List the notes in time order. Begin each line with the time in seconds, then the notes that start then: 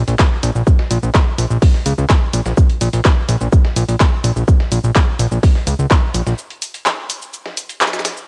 0.08 A#1, closed hi-hat, shaker
0.19 kick, snare, clap, shaker
0.43 A#1, open hi-hat, shaker
0.55 A#1, shaker
0.67 kick, shaker
0.79 snare
0.91 A#1, open hi-hat, shaker
1.03 A#1, shaker
1.14 kick, snare, clap, shaker
1.38 A#1, open hi-hat, shaker
1.50 A#1, shaker
1.62 kick, open hi-hat, shaker
1.74 snare
1.86 C#2, open hi-hat, shaker
1.98 C#2, shaker
2.10 kick, snare, clap, shaker
2.33 A#1, open hi-hat, shaker
2.46 A#1, snare, shaker
2.57 kick, shaker
2.70 closed hi-hat
2.81 A#1, open hi-hat, shaker
2.93 A#1, closed hi-hat, shaker
3.05 kick, snare, clap, shaker
3.29 A#1, open hi-hat, shaker
3.41 A#1, shaker
3.52 kick, shaker
3.65 snare
3.76 A#1, open hi-hat, shaker
3.89 A#1, closed hi-hat, shaker
4.00 kick, snare, clap, shaker
4.24 A#1, open hi-hat, shaker
4.36 A#1, shaker
4.48 kick, shaker
4.60 snare
4.72 A#1, open hi-hat, shaker
4.84 A#1, shaker
4.95 kick, snare, clap, shaker
5.19 A#1, open hi-hat, shaker
5.31 A#1, shaker
5.43 kick, open hi-hat, shaker
5.55 snare
5.67 C#2, open hi-hat, shaker
5.79 C#2, shaker
5.91 kick, snare, clap, shaker
6.14 A#1, open hi-hat, shaker
6.27 A#1, snare, shaker
6.38 shaker
6.50 closed hi-hat
6.62 open hi-hat, shaker
6.74 closed hi-hat, shaker
6.86 snare, clap, shaker
7.10 open hi-hat, shaker
7.22 shaker
7.33 shaker
7.46 snare
7.57 open hi-hat, shaker
7.69 closed hi-hat, shaker
7.81 snare, clap, shaker
7.87 snare, shaker
7.93 snare, shaker
7.99 snare, shaker
8.05 snare, open hi-hat, shaker
8.17 shaker